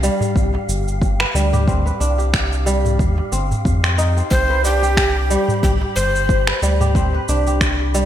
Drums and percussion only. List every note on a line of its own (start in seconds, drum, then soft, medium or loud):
0.03 cabasa medium
0.20 darbuka dum medium
0.20 cabasa soft
0.36 kick loud
0.36 cabasa soft
0.54 darbuka ka medium
0.54 darbuka tek medium
0.69 cabasa medium
0.88 cabasa soft
1.02 kick medium
1.02 cabasa soft
1.20 finger snap medium
1.36 cabasa medium
1.53 darbuka ka soft
1.53 darbuka dum medium
1.53 cabasa soft
1.68 kick loud
1.68 cabasa soft
1.87 cabasa soft
2.01 cabasa medium
2.19 darbuka ka soft
2.19 cabasa soft
2.34 finger snap medium
2.34 kick medium
2.34 cabasa soft
2.52 darbuka ka medium
2.52 cabasa soft
2.67 cabasa medium
2.85 darbuka tek soft
2.85 darbuka dum medium
2.85 cabasa soft
2.99 kick loud
2.99 cabasa soft
3.18 darbuka tek medium
3.33 cabasa medium
3.51 darbuka dum medium
3.51 cabasa soft
3.65 kick medium
3.65 cabasa soft
3.84 finger snap medium
3.84 cabasa soft
3.99 cabasa medium
4.17 cabasa soft
4.31 kick medium
4.31 cabasa soft
4.65 cabasa medium
4.83 cabasa soft
4.97 finger snap medium
4.97 kick loud
4.97 cabasa soft
5.16 darbuka ka medium
5.31 cabasa medium
5.48 darbuka dum medium
5.48 cabasa soft
5.63 kick loud
5.63 cabasa soft
5.81 darbuka ka medium
5.81 darbuka tek medium
5.97 cabasa medium
6.16 cabasa soft
6.29 kick loud
6.29 cabasa soft
6.47 finger snap medium
6.63 cabasa medium
6.81 darbuka ka soft
6.81 darbuka dum medium
6.81 cabasa soft
6.95 kick loud
6.95 cabasa soft
7.29 cabasa medium
7.47 cabasa soft
7.61 finger snap medium
7.61 kick loud
7.61 cabasa soft
7.80 darbuka ka medium
7.95 cabasa medium